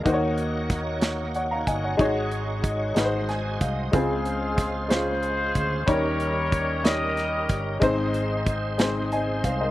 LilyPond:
<<
  \new Staff \with { instrumentName = "Grand piano" } { \time 6/8 \key ees \dorian \tempo 4. = 62 r2. | r2. | aes'4. c''4. | des''4. ees''4 r8 |
r2. | }
  \new Staff \with { instrumentName = "Horn section" } { \time 6/8 \key ees \dorian << { r2. | r2. | aes'4. c''4. | des''4. ees''4 r8 |
r2. | } \\ { r2. | r2. | <c' f'>4. <f' aes'>4. | <g' bes'>4. <g' bes'>4. |
r2. | } >> }
  \new Staff \with { instrumentName = "Upright piano" } { \time 6/8 \key ees \dorian << { r2 <des'' ges''>16 <f'' bes''>16 <ees'' aes''>16 <des'' ges''>16~ | <des'' ges''>16 r4. r16 aes''8 f''8 | r2. | r2. |
r2 <ees'' aes''>8 <c'' f''>16 <bes' ees''>16 | } \\ { <ees bes ees' ges' c'' des''>4. r4. | <aes, aes ees' ges' des''>4. <aes, aes ees' ges' ces'' c''>4. | <des aes c' f' c''>4. <aes des' f' c''>4. | <ees g des' ees' bes'>4. <g des' ees' des''>4. |
<aes, aes c' ees' c''>4. <aes c' ees' c''>4. | } >> }
  \new Staff \with { instrumentName = "Tonewheel organ" } { \time 6/8 \key ees \dorian << { r2. | r2 aes''8 ees''8 | r2. | r2. |
r2. | } \\ { <bes ees' ges' c'' des''>2. | <aes ees' ges' c'' des''>4. <aes ees' ges' bes' c''>4. | <des aes f' c''>2. | <g des' ees' bes'>2. |
<aes c' ees' c''>2. | } >> }
  \new Staff \with { instrumentName = "Fingered electric bass" } { \clef bass \time 6/8 \key ees \dorian ees,2~ ees,8 g,,8 | aes,,4. aes,,4 c,8 | des,2~ des,8 d,8 | ees,2~ ees,8 g,,8 |
aes,,2~ aes,,8 c,8 | }
  \new DrumStaff \with { instrumentName = "Drums" } \drummode { \time 6/8 <hh bd>8 hh8 <hh bd sn>8 <hh sn>8 hh8 <hh bd>8 | <hh bd>8 hh8 <hh bd>8 <hh sn>8 <hh sn>8 <hh bd>8 | <hh bd>8 hh8 <hh bd sn>8 <hh sn>8 hh8 <hh bd>8 | <hh bd>8 hh8 <hh bd>8 <hh sn>8 <hh sn>8 <hh bd>8 |
<hh bd>8 hh8 <hh bd>8 <hh sn>8 hh8 <hh bd>8 | }
>>